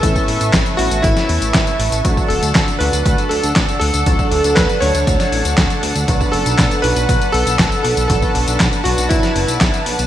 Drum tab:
HH |x-oxxxoxxxoxxxox|x-oxxxoxxxoxxxox|x-oxxxoxxxoxxxox|x-oxxxoxxxoxxxox|
TB |xx-xxx-xxx-xxx-x|xx-xxx-xxx-xxx-x|xx-xxx-xxx-xxx-x|xx-xxx-xxx-xxx-x|
CP |----x-------x---|----x-------x---|----x-------x---|----x-------x---|
SD |----o----o--o---|----o-------o---|----o----o--o---|----o-------o---|
BD |oo--o---o---o---|oo--o---o---o---|oo--o---o---o---|oo--o---o---o---|

HH |x-oxxxoxxxoxxxox|
TB |xx-xxx-xxx-xxx-x|
CP |----x-------x---|
SD |----o----o--o---|
BD |oo--o---o---o---|